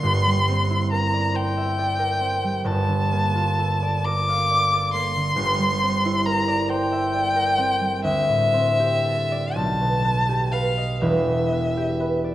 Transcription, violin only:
0.00 0.91 C6 loud
0.92 1.37 A#5 medium
1.35 2.67 G5 loud
2.66 4.06 A5 loud
4.05 4.92 D6 loud
4.93 6.27 C6 loud
6.26 6.71 A#5 loud
6.69 8.03 G5 loud
8.04 9.57 E5 loud
9.55 10.53 A5 loud
10.52 11.02 F5 medium
11.00 12.35 E5 medium

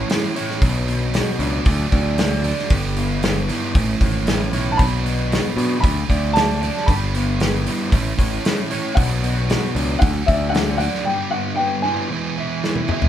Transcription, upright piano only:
4.72 4.79 A5 medium
4.77 5.79 B5 loud
5.80 6.36 B5 medium
6.33 6.88 A5 medium
6.86 8.40 B5 medium
8.95 9.97 F#5 medium
9.99 10.27 F#5 medium
10.26 10.54 E5 medium
10.49 10.76 F#5 medium
10.77 11.06 F#5 medium
11.04 11.32 G5 medium
11.31 11.58 F#5 medium
11.55 11.84 G5 medium
11.82 12.58 G#5 medium

